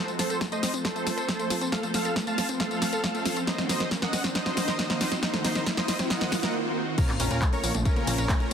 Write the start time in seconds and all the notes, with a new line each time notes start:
Already playing: F3 C4 A4 C5, riser
0.08 A3, closed hi-hat, tambourine
0.19 F3 A3 C4 A4 C5, snare, open hi-hat, tambourine
0.30 A4, closed hi-hat, tambourine
0.41 A3, kick, snare, closed hi-hat, tambourine
0.52 A3 C5 D#5, closed hi-hat, tambourine
0.63 C4, snare, open hi-hat, tambourine
0.74 F3 C4 A4 C5, closed hi-hat, tambourine
0.85 A3 A4 C5, kick, snare, closed hi-hat, tambourine
0.96 F3 A3 C4 A4 C5, closed hi-hat, tambourine
1.07 A3, snare, open hi-hat, tambourine
1.18 A4, closed hi-hat, tambourine
1.28 F3 A3 C4 A4 C5, kick, snare, closed hi-hat, tambourine
1.39 F3 A3 C4 A4 C5, closed hi-hat, tambourine
1.50 F4, snare, open hi-hat, tambourine
1.61 F3 C4 A4 C5, closed hi-hat, tambourine
1.72 F3 A3 C4 A4 C5 F5, kick, snare, closed hi-hat, tambourine
1.83 A3, closed hi-hat, tambourine
1.94 F3 A3 C4 A4 C5 F5, snare, open hi-hat, tambourine
2.05 A4, closed hi-hat, tambourine
2.16 A3, kick, snare, closed hi-hat, tambourine
2.27 A3 F5 A5, closed hi-hat, tambourine
2.38 C4, snare, open hi-hat, tambourine
2.49 F3 C4 A4 C5, closed hi-hat, tambourine
2.60 A3 A4 F5, kick, snare, closed hi-hat, tambourine
2.71 F3 A3 C4 A4 C5, closed hi-hat, tambourine
2.82 A3, snare, open hi-hat, tambourine
2.93 A4, closed hi-hat, tambourine
3.04 F3 A3 C4 A4 C5, kick, snare, closed hi-hat, tambourine
3.15 F3 A3 C4 A4 C5, closed hi-hat, tambourine
3.25 F4, snare, open hi-hat, tambourine
3.37 F3 C4 A4 C5, closed hi-hat, tambourine
3.47 D#3 A#3 C4 F#4 C5 D#5, kick, snare, closed hi-hat, tambourine
3.58 A3, snare, closed hi-hat, tambourine
3.69 D#3 A#3 C4 F#4 C5 D#5, snare, open hi-hat, tambourine
3.80 A#4, snare, closed hi-hat, tambourine
3.91 A#3, kick, snare, closed hi-hat, tambourine
4.02 A#3 D#5 F#5, snare, closed hi-hat, tambourine
4.13 C4, snare, open hi-hat, tambourine
4.24 D#3 C4 F#4 C5, snare, closed hi-hat, tambourine
4.35 A#3 C5 D#5, kick, snare, closed hi-hat, tambourine
4.46 D#3 A#3 C4 F#4 C5, snare, closed hi-hat, tambourine
4.57 A#3, snare, open hi-hat, tambourine
4.68 A#4, snare, closed hi-hat, tambourine
4.79 D#3 A#3 C4 F#4 C5, kick, snare, closed hi-hat, tambourine
4.90 D#3 A#3 C4 F#4 C5, snare, closed hi-hat, tambourine
5.01 F4, snare, open hi-hat, tambourine
5.12 D#3 C4 F#4 C5, snare, closed hi-hat, tambourine
5.23 D#3 A#3 C4 D#4 F#4 C5, kick, snare, closed hi-hat, tambourine
5.34 A3, snare, closed hi-hat, tambourine
5.45 D#3 A#3 C4 D#4 F#4 C5, snare, open hi-hat, tambourine
5.55 A#4, snare, closed hi-hat, tambourine
5.66 A#3, kick, snare, closed hi-hat, tambourine
5.77 A#3 C5 D#5, snare, closed hi-hat, tambourine
5.88 C4, snare, open hi-hat, tambourine
5.99 D#3 C4 F#4 C5, snare, closed hi-hat, tambourine
6.10 A#3 D#5 F#5, kick, snare, closed hi-hat, tambourine, swell
6.21 D#3 A#3 C4 F#4 C5, snare, closed hi-hat, tambourine
6.32 A#3, kick, snare, open hi-hat, tambourine
6.43 A#4, snare, closed hi-hat, tambourine
6.54 D#3 C4 F#4 C5
6.65 D#3 C4 F#4 C5
6.87 D#3 C4 F#4 C5
6.98 C#3 A#3 C4 C#4 F4 A#4, kick, closed hi-hat, crash, tambourine, sub drop
7.09 A#3, clap, closed hi-hat, tambourine
7.20 A#1 C#3 A#3 C4 C#4 F4 A#4, open hi-hat, tambourine
7.31 A#2 A#4, closed hi-hat, tambourine
7.42 A3, kick, clap, closed hi-hat, tambourine
7.53 C#4 A#4 C#5, closed hi-hat, tambourine
7.63 A#1 A#3, open hi-hat, tambourine
7.74 A#1 C#3 A3 A#3 C4 F4, closed hi-hat, tambourine
7.85 A3 C#4 A#4, kick, closed hi-hat, tambourine
7.96 C#3 A#3 C4 F4, closed hi-hat, tambourine
8.07 A#1 A#3, open hi-hat, tambourine
8.18 A#1 A#4, closed hi-hat, tambourine
8.29 C#3 A3 A#3 C4 F4, kick, clap, closed hi-hat, tambourine
8.40 C#3 A#3 C4 C#4 F4, closed hi-hat, tambourine